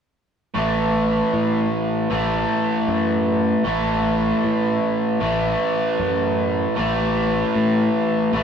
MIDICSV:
0, 0, Header, 1, 3, 480
1, 0, Start_track
1, 0, Tempo, 779221
1, 341, Time_signature, 4, 2, 24, 8
1, 5194, End_track
2, 0, Start_track
2, 0, Title_t, "Overdriven electric guitar"
2, 0, Program_c, 0, 29
2, 336, Note_on_c, 0, 45, 76
2, 352, Note_on_c, 0, 52, 72
2, 360, Note_on_c, 0, 57, 75
2, 1290, Note_off_c, 0, 45, 0
2, 1292, Note_on_c, 0, 45, 55
2, 1300, Note_off_c, 0, 52, 0
2, 1303, Note_on_c, 0, 52, 65
2, 1311, Note_off_c, 0, 57, 0
2, 1314, Note_on_c, 0, 57, 64
2, 2241, Note_off_c, 0, 45, 0
2, 2244, Note_on_c, 0, 45, 70
2, 2256, Note_off_c, 0, 52, 0
2, 2258, Note_on_c, 0, 52, 74
2, 2264, Note_off_c, 0, 57, 0
2, 2267, Note_on_c, 0, 57, 72
2, 3204, Note_off_c, 0, 45, 0
2, 3206, Note_on_c, 0, 45, 64
2, 3217, Note_off_c, 0, 52, 0
2, 3220, Note_on_c, 0, 52, 63
2, 3227, Note_off_c, 0, 57, 0
2, 3230, Note_on_c, 0, 57, 66
2, 4163, Note_off_c, 0, 45, 0
2, 4166, Note_on_c, 0, 45, 73
2, 4179, Note_off_c, 0, 52, 0
2, 4181, Note_on_c, 0, 52, 78
2, 4186, Note_off_c, 0, 57, 0
2, 4188, Note_on_c, 0, 57, 88
2, 5118, Note_off_c, 0, 45, 0
2, 5129, Note_off_c, 0, 57, 0
2, 5130, Note_on_c, 0, 45, 65
2, 5139, Note_off_c, 0, 52, 0
2, 5142, Note_on_c, 0, 52, 66
2, 5151, Note_on_c, 0, 57, 76
2, 5194, Note_off_c, 0, 45, 0
2, 5194, Note_off_c, 0, 52, 0
2, 5194, Note_off_c, 0, 57, 0
2, 5194, End_track
3, 0, Start_track
3, 0, Title_t, "Picked electric bass"
3, 0, Program_c, 1, 34
3, 343, Note_on_c, 1, 33, 77
3, 738, Note_off_c, 1, 33, 0
3, 822, Note_on_c, 1, 45, 74
3, 1019, Note_off_c, 1, 45, 0
3, 1301, Note_on_c, 1, 33, 75
3, 1498, Note_off_c, 1, 33, 0
3, 1774, Note_on_c, 1, 42, 84
3, 2172, Note_off_c, 1, 42, 0
3, 2253, Note_on_c, 1, 33, 73
3, 2652, Note_off_c, 1, 33, 0
3, 2738, Note_on_c, 1, 45, 76
3, 2936, Note_off_c, 1, 45, 0
3, 3213, Note_on_c, 1, 33, 78
3, 3414, Note_off_c, 1, 33, 0
3, 3693, Note_on_c, 1, 42, 87
3, 4092, Note_off_c, 1, 42, 0
3, 4176, Note_on_c, 1, 33, 80
3, 4574, Note_off_c, 1, 33, 0
3, 4654, Note_on_c, 1, 45, 77
3, 4855, Note_off_c, 1, 45, 0
3, 5134, Note_on_c, 1, 33, 81
3, 5194, Note_off_c, 1, 33, 0
3, 5194, End_track
0, 0, End_of_file